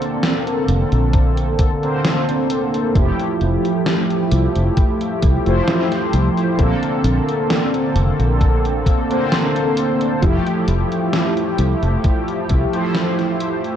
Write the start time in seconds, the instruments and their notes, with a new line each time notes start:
Already playing: analog polysynth D3 A#3 C4 A4
0.02 closed hi-hat
0.23 snare, closed hi-hat
0.47 closed hi-hat
0.68 fingered electric bass F1, closed hi-hat
0.92 fingered electric bass A#1, closed hi-hat
1.13 kick, closed hi-hat
1.37 closed hi-hat
1.59 fingered electric bass F1, kick, closed hi-hat
1.82 analog polysynth D3 A#3 C4 C5, closed hi-hat
2.05 snare, closed hi-hat
2.29 closed hi-hat
2.50 closed hi-hat
2.74 closed hi-hat
2.94 fingered electric bass F1, analog polysynth F3 A3 E4 G4, kick, closed hi-hat
3.19 closed hi-hat
3.41 fingered electric bass F1, closed hi-hat
3.65 closed hi-hat
3.86 snare, closed hi-hat
4.10 closed hi-hat
4.32 fingered electric bass C2, closed hi-hat
4.55 fingered electric bass F1, closed hi-hat
4.77 kick, closed hi-hat
5.01 closed hi-hat
5.22 fingered electric bass C2, kick, closed hi-hat
5.45 fingered electric bass F1, analog polysynth F3 A3 E4 C5, closed hi-hat
5.68 snare, closed hi-hat
5.92 snare, closed hi-hat
6.13 fingered electric bass C2, closed hi-hat
6.38 closed hi-hat
6.57 fingered electric bass A#1, analog polysynth D3 A#3 C4 A4, kick, closed hi-hat
6.83 closed hi-hat
7.04 fingered electric bass A#1, closed hi-hat
7.29 closed hi-hat
7.50 snare, closed hi-hat
7.74 closed hi-hat
7.95 fingered electric bass F1, closed hi-hat
8.19 fingered electric bass A#1, closed hi-hat
8.41 kick, closed hi-hat
8.65 closed hi-hat
8.86 fingered electric bass F1, kick, closed hi-hat
9.09 analog polysynth D3 A#3 C4 C5, closed hi-hat
9.32 snare, closed hi-hat
9.56 closed hi-hat
9.77 closed hi-hat
10.01 closed hi-hat
10.21 fingered electric bass F1, analog polysynth F3 A3 E4 G4, kick, closed hi-hat
10.47 closed hi-hat
10.68 fingered electric bass F1, closed hi-hat
10.92 closed hi-hat
11.13 snare, closed hi-hat
11.37 closed hi-hat
11.58 fingered electric bass C2, closed hi-hat
11.83 fingered electric bass F1, closed hi-hat
12.04 kick, closed hi-hat
12.28 closed hi-hat
12.49 fingered electric bass C2, kick, closed hi-hat
12.72 analog polysynth F3 A3 E4 C5, closed hi-hat
12.95 snare, closed hi-hat
13.19 snare, closed hi-hat
13.40 closed hi-hat
13.64 closed hi-hat